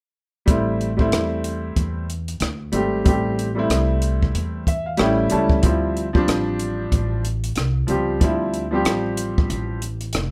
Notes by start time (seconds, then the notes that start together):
0.46 A1 G3 A3 C4 E4, kick, closed hi-hat
0.81 closed hi-hat
0.97 G3 A3 C4 E4, kick
1.12 E2, cross-stick, closed hi-hat
1.44 closed hi-hat
1.76 E2, kick, closed hi-hat
2.10 closed hi-hat
2.28 closed hi-hat
2.40 D2, cross-stick, closed hi-hat
2.72 G#1 G3 A3 C4 G4, closed hi-hat
3.04 A1 G3 A3 C4 G4, kick, closed hi-hat
3.39 closed hi-hat
3.55 G3 A3 C4
3.59 E4
3.70 C2, cross-stick, closed hi-hat
4.02 closed hi-hat
4.23 kick
4.34 E2, closed hi-hat
4.67 E5, kick, closed hi-hat
4.86 F5
4.97 A1 G3 A3 C#4 G5, cross-stick, closed hi-hat
5.01 E4
5.30 C#2 G3 A3 C#4 E4 A5, closed hi-hat
5.49 kick
5.62 D2 F3 G3 C4 E4, kick, closed hi-hat
5.97 closed hi-hat
6.13 F3 G3 C4 D4, kick
6.28 A1, cross-stick, closed hi-hat
6.59 closed hi-hat
6.92 A1, kick, closed hi-hat
7.25 closed hi-hat
7.44 closed hi-hat
7.56 C2, cross-stick, closed hi-hat
7.87 C#2 F3 G3 C4, closed hi-hat
7.91 G4
8.20 D2 F3 G3 C4 E4, kick, closed hi-hat
8.54 closed hi-hat
8.71 F3 G3 C4 G4
8.85 A1, cross-stick, closed hi-hat
9.17 closed hi-hat
9.38 kick
9.50 A1, closed hi-hat
9.82 closed hi-hat
10.01 closed hi-hat
10.13 F1, cross-stick, closed hi-hat